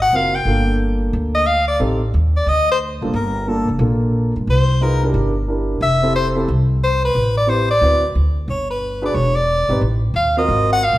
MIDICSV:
0, 0, Header, 1, 4, 480
1, 0, Start_track
1, 0, Key_signature, -2, "minor"
1, 0, Tempo, 334076
1, 664, Time_signature, 4, 2, 24, 8
1, 15777, End_track
2, 0, Start_track
2, 0, Title_t, "Soprano saxophone"
2, 0, Program_c, 0, 64
2, 24, Note_on_c, 0, 78, 108
2, 222, Note_on_c, 0, 77, 91
2, 244, Note_off_c, 0, 78, 0
2, 501, Note_on_c, 0, 79, 81
2, 522, Note_off_c, 0, 77, 0
2, 1149, Note_off_c, 0, 79, 0
2, 1935, Note_on_c, 0, 75, 90
2, 2103, Note_on_c, 0, 77, 101
2, 2125, Note_off_c, 0, 75, 0
2, 2400, Note_off_c, 0, 77, 0
2, 2409, Note_on_c, 0, 74, 85
2, 2572, Note_off_c, 0, 74, 0
2, 3397, Note_on_c, 0, 74, 79
2, 3563, Note_on_c, 0, 75, 93
2, 3585, Note_off_c, 0, 74, 0
2, 3863, Note_off_c, 0, 75, 0
2, 3897, Note_on_c, 0, 72, 87
2, 3988, Note_off_c, 0, 72, 0
2, 4528, Note_on_c, 0, 70, 69
2, 5005, Note_on_c, 0, 69, 66
2, 5026, Note_off_c, 0, 70, 0
2, 5304, Note_off_c, 0, 69, 0
2, 6463, Note_on_c, 0, 72, 83
2, 6935, Note_on_c, 0, 70, 76
2, 6957, Note_off_c, 0, 72, 0
2, 7230, Note_off_c, 0, 70, 0
2, 8367, Note_on_c, 0, 76, 92
2, 8805, Note_off_c, 0, 76, 0
2, 8842, Note_on_c, 0, 72, 83
2, 9023, Note_off_c, 0, 72, 0
2, 9823, Note_on_c, 0, 72, 83
2, 10093, Note_off_c, 0, 72, 0
2, 10126, Note_on_c, 0, 71, 89
2, 10559, Note_off_c, 0, 71, 0
2, 10590, Note_on_c, 0, 74, 88
2, 10764, Note_on_c, 0, 72, 78
2, 10786, Note_off_c, 0, 74, 0
2, 11060, Note_off_c, 0, 72, 0
2, 11069, Note_on_c, 0, 74, 98
2, 11670, Note_off_c, 0, 74, 0
2, 12215, Note_on_c, 0, 73, 64
2, 12487, Note_off_c, 0, 73, 0
2, 12503, Note_on_c, 0, 71, 68
2, 12945, Note_off_c, 0, 71, 0
2, 13005, Note_on_c, 0, 74, 76
2, 13144, Note_on_c, 0, 73, 84
2, 13166, Note_off_c, 0, 74, 0
2, 13446, Note_on_c, 0, 74, 101
2, 13468, Note_off_c, 0, 73, 0
2, 14101, Note_off_c, 0, 74, 0
2, 14596, Note_on_c, 0, 77, 80
2, 14875, Note_off_c, 0, 77, 0
2, 14916, Note_on_c, 0, 75, 81
2, 15350, Note_off_c, 0, 75, 0
2, 15411, Note_on_c, 0, 78, 110
2, 15569, Note_on_c, 0, 77, 89
2, 15590, Note_off_c, 0, 78, 0
2, 15777, Note_off_c, 0, 77, 0
2, 15777, End_track
3, 0, Start_track
3, 0, Title_t, "Grand piano"
3, 0, Program_c, 1, 0
3, 189, Note_on_c, 1, 65, 47
3, 193, Note_on_c, 1, 60, 59
3, 198, Note_on_c, 1, 66, 50
3, 200, Note_on_c, 1, 70, 62
3, 463, Note_off_c, 1, 65, 0
3, 464, Note_off_c, 1, 60, 0
3, 467, Note_off_c, 1, 66, 0
3, 468, Note_off_c, 1, 70, 0
3, 671, Note_on_c, 1, 58, 54
3, 673, Note_on_c, 1, 65, 50
3, 676, Note_on_c, 1, 69, 67
3, 684, Note_on_c, 1, 62, 53
3, 2005, Note_off_c, 1, 58, 0
3, 2006, Note_off_c, 1, 65, 0
3, 2008, Note_off_c, 1, 69, 0
3, 2012, Note_off_c, 1, 62, 0
3, 2576, Note_on_c, 1, 60, 60
3, 2577, Note_on_c, 1, 63, 60
3, 2582, Note_on_c, 1, 67, 58
3, 2585, Note_on_c, 1, 69, 75
3, 2858, Note_off_c, 1, 60, 0
3, 2858, Note_off_c, 1, 63, 0
3, 2861, Note_off_c, 1, 67, 0
3, 2862, Note_off_c, 1, 69, 0
3, 4327, Note_on_c, 1, 43, 57
3, 4334, Note_on_c, 1, 62, 61
3, 4339, Note_on_c, 1, 65, 62
3, 4344, Note_on_c, 1, 58, 52
3, 4345, Note_on_c, 1, 69, 68
3, 4487, Note_off_c, 1, 43, 0
3, 4490, Note_off_c, 1, 62, 0
3, 4493, Note_off_c, 1, 65, 0
3, 4495, Note_off_c, 1, 58, 0
3, 4496, Note_off_c, 1, 69, 0
3, 4988, Note_on_c, 1, 58, 65
3, 4996, Note_on_c, 1, 69, 68
3, 4999, Note_on_c, 1, 62, 60
3, 5000, Note_on_c, 1, 65, 52
3, 5265, Note_off_c, 1, 58, 0
3, 5269, Note_off_c, 1, 69, 0
3, 5270, Note_off_c, 1, 62, 0
3, 5271, Note_off_c, 1, 65, 0
3, 5460, Note_on_c, 1, 65, 50
3, 5463, Note_on_c, 1, 62, 46
3, 5464, Note_on_c, 1, 58, 59
3, 5471, Note_on_c, 1, 69, 63
3, 6191, Note_off_c, 1, 65, 0
3, 6192, Note_off_c, 1, 62, 0
3, 6193, Note_off_c, 1, 58, 0
3, 6196, Note_off_c, 1, 69, 0
3, 6910, Note_on_c, 1, 63, 65
3, 6917, Note_on_c, 1, 65, 55
3, 6917, Note_on_c, 1, 68, 53
3, 6924, Note_on_c, 1, 71, 68
3, 7187, Note_off_c, 1, 63, 0
3, 7190, Note_off_c, 1, 65, 0
3, 7190, Note_off_c, 1, 68, 0
3, 7193, Note_off_c, 1, 71, 0
3, 7229, Note_on_c, 1, 64, 56
3, 7229, Note_on_c, 1, 70, 72
3, 7230, Note_on_c, 1, 67, 66
3, 7234, Note_on_c, 1, 62, 66
3, 7642, Note_off_c, 1, 64, 0
3, 7642, Note_off_c, 1, 67, 0
3, 7642, Note_off_c, 1, 70, 0
3, 7644, Note_off_c, 1, 62, 0
3, 7870, Note_on_c, 1, 62, 58
3, 7881, Note_on_c, 1, 70, 57
3, 7885, Note_on_c, 1, 64, 52
3, 7888, Note_on_c, 1, 67, 50
3, 8350, Note_off_c, 1, 62, 0
3, 8356, Note_off_c, 1, 70, 0
3, 8357, Note_off_c, 1, 64, 0
3, 8359, Note_off_c, 1, 67, 0
3, 8653, Note_on_c, 1, 60, 72
3, 8660, Note_on_c, 1, 67, 59
3, 8669, Note_on_c, 1, 64, 65
3, 8672, Note_on_c, 1, 69, 81
3, 9104, Note_off_c, 1, 60, 0
3, 9108, Note_off_c, 1, 67, 0
3, 9112, Note_off_c, 1, 64, 0
3, 9113, Note_off_c, 1, 69, 0
3, 9126, Note_on_c, 1, 60, 71
3, 9129, Note_on_c, 1, 67, 64
3, 9141, Note_on_c, 1, 64, 64
3, 9144, Note_on_c, 1, 69, 83
3, 9287, Note_off_c, 1, 60, 0
3, 9289, Note_off_c, 1, 67, 0
3, 9295, Note_off_c, 1, 64, 0
3, 9296, Note_off_c, 1, 69, 0
3, 10729, Note_on_c, 1, 60, 60
3, 10740, Note_on_c, 1, 67, 60
3, 10747, Note_on_c, 1, 64, 57
3, 10750, Note_on_c, 1, 71, 61
3, 11015, Note_off_c, 1, 60, 0
3, 11021, Note_off_c, 1, 67, 0
3, 11024, Note_off_c, 1, 64, 0
3, 11026, Note_off_c, 1, 71, 0
3, 11236, Note_on_c, 1, 64, 58
3, 11242, Note_on_c, 1, 66, 55
3, 11243, Note_on_c, 1, 60, 63
3, 11254, Note_on_c, 1, 71, 67
3, 11509, Note_off_c, 1, 64, 0
3, 11511, Note_off_c, 1, 66, 0
3, 11512, Note_off_c, 1, 60, 0
3, 11518, Note_off_c, 1, 71, 0
3, 12955, Note_on_c, 1, 62, 69
3, 12957, Note_on_c, 1, 66, 53
3, 12966, Note_on_c, 1, 68, 61
3, 12966, Note_on_c, 1, 71, 78
3, 13120, Note_off_c, 1, 62, 0
3, 13121, Note_off_c, 1, 66, 0
3, 13125, Note_off_c, 1, 68, 0
3, 13125, Note_off_c, 1, 71, 0
3, 13925, Note_on_c, 1, 63, 65
3, 13928, Note_on_c, 1, 67, 66
3, 13931, Note_on_c, 1, 60, 65
3, 13945, Note_on_c, 1, 71, 70
3, 14084, Note_off_c, 1, 63, 0
3, 14085, Note_off_c, 1, 67, 0
3, 14087, Note_off_c, 1, 60, 0
3, 14094, Note_off_c, 1, 71, 0
3, 14897, Note_on_c, 1, 60, 68
3, 14900, Note_on_c, 1, 70, 79
3, 14902, Note_on_c, 1, 65, 63
3, 14908, Note_on_c, 1, 66, 60
3, 15511, Note_off_c, 1, 60, 0
3, 15513, Note_off_c, 1, 70, 0
3, 15514, Note_off_c, 1, 65, 0
3, 15517, Note_off_c, 1, 66, 0
3, 15777, End_track
4, 0, Start_track
4, 0, Title_t, "Upright bass"
4, 0, Program_c, 2, 32
4, 0, Note_on_c, 2, 32, 71
4, 149, Note_off_c, 2, 32, 0
4, 183, Note_on_c, 2, 30, 73
4, 630, Note_off_c, 2, 30, 0
4, 651, Note_on_c, 2, 31, 69
4, 1570, Note_off_c, 2, 31, 0
4, 1627, Note_on_c, 2, 38, 79
4, 2539, Note_off_c, 2, 38, 0
4, 2582, Note_on_c, 2, 33, 73
4, 3031, Note_off_c, 2, 33, 0
4, 3071, Note_on_c, 2, 39, 73
4, 3516, Note_off_c, 2, 39, 0
4, 3542, Note_on_c, 2, 38, 74
4, 4277, Note_off_c, 2, 38, 0
4, 4339, Note_on_c, 2, 30, 68
4, 4498, Note_off_c, 2, 30, 0
4, 4504, Note_on_c, 2, 31, 78
4, 5239, Note_off_c, 2, 31, 0
4, 5292, Note_on_c, 2, 29, 61
4, 5435, Note_off_c, 2, 29, 0
4, 5443, Note_on_c, 2, 34, 82
4, 6188, Note_off_c, 2, 34, 0
4, 6264, Note_on_c, 2, 43, 66
4, 6418, Note_off_c, 2, 43, 0
4, 6426, Note_on_c, 2, 36, 70
4, 7340, Note_off_c, 2, 36, 0
4, 7383, Note_on_c, 2, 31, 76
4, 8298, Note_off_c, 2, 31, 0
4, 8343, Note_on_c, 2, 29, 79
4, 9258, Note_off_c, 2, 29, 0
4, 9316, Note_on_c, 2, 36, 76
4, 10225, Note_off_c, 2, 36, 0
4, 10272, Note_on_c, 2, 33, 79
4, 11182, Note_off_c, 2, 33, 0
4, 11226, Note_on_c, 2, 38, 72
4, 11673, Note_off_c, 2, 38, 0
4, 11714, Note_on_c, 2, 38, 67
4, 12157, Note_off_c, 2, 38, 0
4, 12181, Note_on_c, 2, 31, 73
4, 13095, Note_off_c, 2, 31, 0
4, 13139, Note_on_c, 2, 28, 73
4, 13873, Note_off_c, 2, 28, 0
4, 13920, Note_on_c, 2, 32, 66
4, 14086, Note_off_c, 2, 32, 0
4, 14098, Note_on_c, 2, 33, 75
4, 14546, Note_off_c, 2, 33, 0
4, 14565, Note_on_c, 2, 39, 72
4, 15020, Note_off_c, 2, 39, 0
4, 15064, Note_on_c, 2, 32, 77
4, 15658, Note_off_c, 2, 32, 0
4, 15706, Note_on_c, 2, 34, 61
4, 15777, Note_off_c, 2, 34, 0
4, 15777, End_track
0, 0, End_of_file